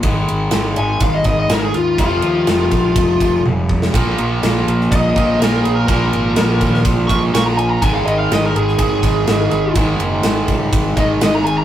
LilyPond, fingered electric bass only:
\new Staff \with { instrumentName = "Fingered electric bass" } { \clef bass \time 4/4 \key aes \mixolydian \tempo 4 = 124 aes,,8 aes,,8 aes,,8 aes,,8 aes,,8 aes,,8 aes,,8 ees,8 | f,,8 ees,8 f,,8 bes,,8 f,,8 f,,8 f,,4 | bes,,8 bes,,8 bes,,8 bes,,8 bes,,8 bes,,8 bes,,8 bes,,8 | bes,,8 aes,,8 bes,,8 ees,8 bes,,8 bes,,8 bes,,4 |
aes,,8 aes,,8 aes,,8 aes,,8 aes,,8 aes,,8 aes,,8 aes,,8 | aes,,8 ges,,8 aes,,8 des,8 aes,,8 aes,,8 aes,,4 | }